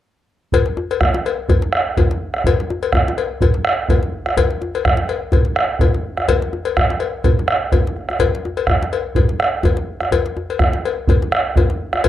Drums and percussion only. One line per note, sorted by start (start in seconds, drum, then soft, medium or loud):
0.52 bombo low medium
0.52 cowbell medium
0.52 djembe bass medium
0.66 djembe slap medium
0.77 djembe tone medium
0.91 cowbell soft
1.01 bombo rim medium
1.01 bombo low medium
1.01 djembe slap soft
1.01 djembe bass medium
1.14 djembe slap medium
1.14 djembe tone medium
1.26 cowbell soft
1.49 bombo low medium
1.49 cowbell soft
1.49 djembe slap soft
1.49 djembe tone medium
1.49 djembe bass medium
1.62 djembe slap medium
1.73 bombo rim medium
1.73 djembe slap soft
1.97 bombo low medium
1.97 cowbell soft
1.97 djembe tone medium
1.97 djembe bass medium
2.11 djembe slap medium
2.34 bombo rim medium
2.44 bombo low medium
2.44 cowbell medium
2.44 djembe bass medium
2.60 djembe slap medium
2.70 djembe tone medium
2.83 cowbell soft
2.93 bombo rim medium
2.93 bombo low medium
2.93 djembe slap soft
2.93 djembe bass medium
3.08 djembe slap medium
3.08 djembe tone medium
3.18 cowbell soft
3.41 bombo low medium
3.41 cowbell soft
3.41 djembe slap soft
3.41 djembe tone medium
3.41 djembe bass medium
3.54 djembe slap medium
3.65 bombo rim medium
3.65 djembe slap soft
3.89 bombo low medium
3.89 cowbell soft
3.89 djembe tone medium
3.89 djembe bass medium
4.03 djembe slap soft
4.26 bombo rim medium
4.26 djembe tone soft
4.37 bombo low medium
4.37 cowbell medium
4.37 djembe bass medium
4.50 djembe slap soft
4.62 djembe tone medium
4.75 cowbell soft
4.85 bombo rim medium
4.85 bombo low medium
4.85 djembe slap soft
4.85 djembe bass medium
4.97 djembe slap soft
4.97 djembe tone soft
5.09 cowbell soft
5.32 bombo low loud
5.32 cowbell soft
5.32 djembe slap soft
5.32 djembe tone medium
5.32 djembe bass medium
5.45 djembe slap soft
5.56 bombo rim medium
5.56 djembe slap soft
5.79 bombo low loud
5.79 cowbell soft
5.79 djembe tone medium
5.79 djembe bass medium
5.94 djembe slap medium
6.17 bombo rim medium
6.17 djembe tone soft
6.28 bombo low medium
6.28 cowbell medium
6.28 djembe bass medium
6.42 djembe slap medium
6.53 djembe slap soft
6.53 djembe tone medium
6.65 cowbell soft
6.65 djembe slap soft
6.77 bombo rim medium
6.77 bombo low medium
6.77 djembe bass medium
6.89 bombo rim soft
6.89 djembe slap medium
6.89 djembe tone medium
7.00 bombo rim soft
7.00 cowbell soft
7.24 bombo low medium
7.24 cowbell soft
7.24 djembe tone medium
7.24 djembe bass medium
7.39 djembe slap soft
7.48 bombo rim medium
7.72 bombo low medium
7.72 cowbell soft
7.72 djembe tone medium
7.72 djembe bass medium
7.87 djembe slap medium
7.96 bombo rim soft
7.96 djembe slap soft
8.09 bombo rim medium
8.09 djembe tone soft
8.19 bombo low medium
8.19 cowbell medium
8.19 djembe bass medium
8.35 djembe slap medium
8.45 djembe tone medium
8.57 cowbell soft
8.67 bombo rim medium
8.67 bombo low medium
8.67 djembe slap soft
8.67 djembe bass medium
8.82 djembe slap medium
8.82 djembe tone medium
8.93 cowbell soft
9.15 bombo low medium
9.15 cowbell soft
9.15 djembe slap soft
9.15 djembe tone medium
9.15 djembe bass medium
9.29 djembe slap medium
9.39 bombo rim medium
9.39 djembe slap soft
9.63 bombo low medium
9.63 cowbell soft
9.63 djembe tone medium
9.63 djembe bass medium
9.77 djembe slap medium
10.01 bombo rim medium
10.01 djembe tone medium
10.11 bombo low medium
10.11 cowbell medium
10.11 djembe bass medium
10.26 djembe slap medium
10.37 djembe tone medium
10.50 cowbell soft
10.59 bombo rim medium
10.59 bombo low medium
10.59 djembe slap soft
10.59 djembe bass medium
10.73 djembe slap medium
10.73 djembe tone medium
10.85 cowbell soft
11.08 bombo low medium
11.08 cowbell soft
11.08 djembe slap soft
11.08 djembe tone medium
11.08 djembe bass medium
11.22 djembe slap medium
11.32 bombo rim medium
11.32 djembe slap soft
11.56 bombo low medium
11.56 cowbell soft
11.56 djembe tone medium
11.56 djembe bass medium
11.70 djembe slap medium
11.93 bombo rim medium
11.93 djembe tone medium
12.04 bombo low medium
12.04 cowbell medium
12.04 djembe bass medium